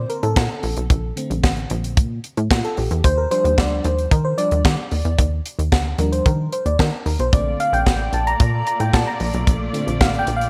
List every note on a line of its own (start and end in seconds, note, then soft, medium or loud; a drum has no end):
0.00 0.86 D3 medium
0.00 0.86 A#3 medium
0.00 0.86 C4 medium
0.00 0.10 C5 medium
0.10 0.22 A#4 medium
0.10 closed hi-hat medium
0.23 0.34 A2 medium
0.23 0.99 A4 medium
0.23 closed hi-hat soft
0.36 0.48 A#2 loud
0.36 kick loud
0.36 snare loud
0.63 0.75 A#1 loud
0.63 open hi-hat medium
0.77 0.88 B1 medium
0.77 closed hi-hat medium
0.90 1.12 A#1 loud
0.90 kick loud
0.90 closed hi-hat loud
1.16 1.93 D3 medium
1.16 1.93 A3 medium
1.16 1.94 C4 medium
1.16 closed hi-hat medium
1.30 1.42 A#1 medium
1.30 closed hi-hat medium
1.44 1.66 A1 medium
1.44 kick medium
1.44 snare medium
1.57 closed hi-hat soft
1.70 1.99 A#1 loud
1.70 closed hi-hat medium
1.84 closed hi-hat medium
1.97 2.20 A#2 loud
1.97 kick loud
1.97 closed hi-hat loud
2.24 closed hi-hat medium
2.37 2.49 A2 medium
2.37 closed hi-hat soft
2.51 2.62 A#2 medium
2.51 2.63 F4 medium
2.51 kick loud
2.51 snare loud
2.64 2.78 A4 loud
2.64 closed hi-hat soft
2.77 2.89 A#1 medium
2.77 3.03 G4 medium
2.77 open hi-hat medium
2.91 3.02 E2 loud
2.91 closed hi-hat medium
3.04 3.27 D#2 loud
3.04 3.18 C5 loud
3.04 kick loud
3.04 closed hi-hat loud
3.18 3.24 A#4 medium
3.31 4.07 F3 medium
3.31 4.07 G3 medium
3.31 4.08 D4 medium
3.31 3.59 C5 loud
3.31 closed hi-hat medium
3.45 3.56 D#2 medium
3.45 closed hi-hat medium
3.58 3.80 D2 medium
3.58 3.85 D5 medium
3.58 kick loud
3.58 snare medium
3.84 4.07 D#2 loud
3.84 4.12 C5 medium
3.84 closed hi-hat medium
3.99 closed hi-hat medium
4.11 4.34 D#3 loud
4.11 4.24 A#4 medium
4.11 kick loud
4.11 closed hi-hat medium
4.25 4.37 C5 loud
4.37 4.62 F3 medium
4.37 4.62 G3 soft
4.37 4.62 D4 medium
4.37 5.14 D5 loud
4.37 closed hi-hat medium
4.51 4.63 D#2 loud
4.51 closed hi-hat soft
4.65 4.76 D#3 medium
4.65 kick loud
4.65 snare loud
4.91 5.03 D#2 medium
4.91 open hi-hat medium
5.05 5.16 E2 loud
5.05 closed hi-hat soft
5.18 5.41 D#2 loud
5.18 kick loud
5.18 closed hi-hat loud
5.46 closed hi-hat medium
5.59 5.70 D#2 medium
5.59 closed hi-hat medium
5.72 5.95 D2 medium
5.72 kick medium
5.72 snare medium
5.98 6.21 D#2 medium
5.98 6.34 F3 soft
5.98 6.34 G3 medium
5.98 6.35 D4 medium
5.98 6.13 A#4 medium
5.98 closed hi-hat medium
6.12 6.26 C5 medium
6.12 closed hi-hat medium
6.26 6.48 D#3 loud
6.26 6.53 A#4 medium
6.26 kick loud
6.26 closed hi-hat medium
6.53 6.65 C5 medium
6.53 closed hi-hat medium
6.66 6.77 D#2 medium
6.66 6.80 D5 medium
6.66 closed hi-hat medium
6.79 6.90 D#3 loud
6.79 7.05 A#4 medium
6.79 kick loud
6.79 snare loud
7.06 7.17 D#2 medium
7.06 7.19 A#4 medium
7.06 open hi-hat medium
7.19 7.31 B1 medium
7.19 7.26 C5 medium
7.19 closed hi-hat medium
7.32 7.55 A#1 loud
7.32 10.50 A#2 medium
7.32 8.09 D3 medium
7.32 10.50 A3 medium
7.32 8.09 A3 medium
7.32 8.10 C4 medium
7.32 10.50 F4 medium
7.32 10.50 D5 medium
7.32 7.58 D5 loud
7.32 kick loud
7.32 closed hi-hat loud
7.60 7.74 F5 loud
7.60 closed hi-hat medium
7.73 7.84 A#1 loud
7.73 8.15 G5 loud
7.73 closed hi-hat medium
7.86 8.09 A1 loud
7.86 kick medium
7.86 snare medium
8.13 8.35 A#1 medium
8.13 8.27 A5 medium
8.13 closed hi-hat medium
8.27 8.66 A#5 loud
8.27 closed hi-hat medium
8.40 8.62 A#2 loud
8.40 kick loud
8.40 closed hi-hat medium
8.67 8.80 A#5 loud
8.67 closed hi-hat medium
8.80 8.91 A2 medium
8.80 8.94 G5 loud
8.80 closed hi-hat medium
8.93 9.05 A#2 loud
8.93 9.08 A5 loud
8.93 kick loud
8.93 snare loud
9.07 9.32 A#5 loud
9.20 9.32 A#1 medium
9.20 open hi-hat medium
9.34 9.45 B1 medium
9.34 closed hi-hat medium
9.47 9.70 A#1 loud
9.47 kick loud
9.47 closed hi-hat loud
9.73 10.09 D3 medium
9.73 10.09 A3 medium
9.73 10.10 C4 medium
9.73 closed hi-hat medium
9.87 9.99 A#1 medium
9.87 closed hi-hat medium
10.01 10.23 A1 medium
10.01 10.19 F5 loud
10.01 kick medium
10.01 snare loud
10.14 closed hi-hat soft
10.19 10.37 G5 loud
10.27 10.50 A#1 medium
10.27 closed hi-hat medium
10.37 10.50 F5 loud
10.41 closed hi-hat medium